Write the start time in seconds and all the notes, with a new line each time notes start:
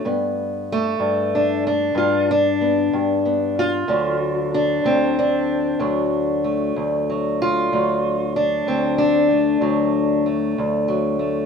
0.05 G2 B3
0.72 A3
1.00 G2
1.35 D4
1.67 D4
1.95 G2 F4
2.31 D4
2.61 B3
2.93 G2
3.25 B3
3.59 F4
3.88 D2 D3 F#3 D4
4.54 D4
4.84 D2 C4
5.19 D4
5.79 D2 F#3
6.44 A3
6.76 D2
7.10 F#3
7.42 F4
7.72 D2 F#3
8.36 D4
8.67 D2 C4
8.98 D4
9.31 A3
9.61 D2 F#3
10.26 A3
10.58 D2
10.88 F#3
11.19 A3